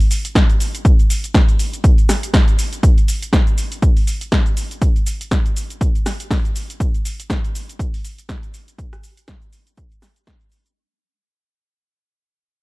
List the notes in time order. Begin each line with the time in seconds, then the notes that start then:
0.00 open hi-hat, shaker
0.11 open hi-hat, shaker
0.25 closed hi-hat, shaker
0.35 kick, snare, closed hi-hat, shaker
0.50 closed hi-hat, shaker
0.60 open hi-hat, shaker
0.75 closed hi-hat, shaker
0.85 kick, closed hi-hat, shaker
0.99 closed hi-hat, shaker
1.10 open hi-hat, shaker
1.24 closed hi-hat, shaker
1.34 kick, snare, closed hi-hat, shaker
1.49 closed hi-hat, shaker
1.59 open hi-hat, shaker
1.73 closed hi-hat, shaker
1.84 kick, closed hi-hat, shaker
1.98 closed hi-hat, shaker
2.09 cross-stick, snare, open hi-hat, shaker
2.23 closed hi-hat, shaker
2.34 kick, snare, open hi-hat, shaker
2.48 closed hi-hat, shaker
2.59 open hi-hat, shaker
2.73 closed hi-hat, shaker
2.83 kick, closed hi-hat, shaker
2.98 closed hi-hat, shaker
3.08 open hi-hat, shaker
3.23 closed hi-hat, shaker
3.33 kick, snare, closed hi-hat, shaker
3.47 closed hi-hat, shaker
3.58 open hi-hat, shaker
3.72 closed hi-hat, shaker
3.82 kick, closed hi-hat, shaker
3.97 open hi-hat, shaker
4.07 open hi-hat, shaker
4.21 closed hi-hat, shaker
4.32 kick, snare, closed hi-hat, shaker
4.46 closed hi-hat, shaker
4.57 open hi-hat, shaker
4.71 closed hi-hat, shaker
4.82 kick, closed hi-hat, shaker
4.96 closed hi-hat, shaker
5.07 open hi-hat, shaker
5.21 closed hi-hat, shaker
5.31 kick, snare, closed hi-hat, shaker
5.46 closed hi-hat, shaker
5.57 open hi-hat, shaker
5.70 closed hi-hat, shaker
5.81 kick, closed hi-hat, shaker
5.95 closed hi-hat, shaker
6.06 cross-stick, snare, open hi-hat, shaker
6.20 closed hi-hat, shaker
6.31 kick, snare, open hi-hat, shaker
6.45 closed hi-hat, shaker
6.56 open hi-hat, shaker
6.70 closed hi-hat, shaker
6.80 kick, closed hi-hat, shaker
6.95 closed hi-hat, shaker
7.05 open hi-hat, shaker
7.20 closed hi-hat, shaker
7.30 kick, snare, closed hi-hat, shaker
7.44 closed hi-hat, shaker
7.55 open hi-hat, shaker
7.69 closed hi-hat, shaker
7.79 kick, closed hi-hat, shaker
7.94 open hi-hat, shaker
8.05 open hi-hat, shaker
8.18 closed hi-hat, shaker
8.29 kick, snare, closed hi-hat, shaker
8.43 closed hi-hat, shaker
8.54 open hi-hat, shaker
8.68 closed hi-hat, shaker
8.78 kick, closed hi-hat, shaker
8.93 cross-stick, closed hi-hat, shaker
9.04 open hi-hat, shaker
9.17 closed hi-hat, shaker
9.28 kick, snare, closed hi-hat, shaker
9.42 closed hi-hat, shaker
9.53 open hi-hat, shaker
9.67 closed hi-hat, shaker
9.77 kick, closed hi-hat, shaker
9.92 closed hi-hat, shaker
10.02 cross-stick, snare, open hi-hat, shaker
10.16 closed hi-hat, shaker
10.27 kick, snare, open hi-hat, shaker
10.41 closed hi-hat, shaker
10.52 open hi-hat, shaker
10.66 closed hi-hat, shaker